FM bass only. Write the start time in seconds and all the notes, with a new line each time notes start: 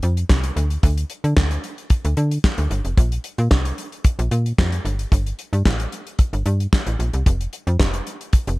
0.03 F2
0.30 C2
0.56 D2
0.83 D2
1.24 D3
1.37 D2
2.05 D2
2.17 D3
2.58 D2
2.71 G1
2.85 F1
2.97 A#1
3.38 A#2
3.51 C2
4.19 A#1
4.31 A#2
4.59 F2
4.85 G1
5.12 G1
5.53 G2
5.66 A1
6.33 G1
6.46 G2
6.87 A1
6.99 A#1
7.14 C2
7.26 F1
7.67 F2
7.80 F1
8.47 F1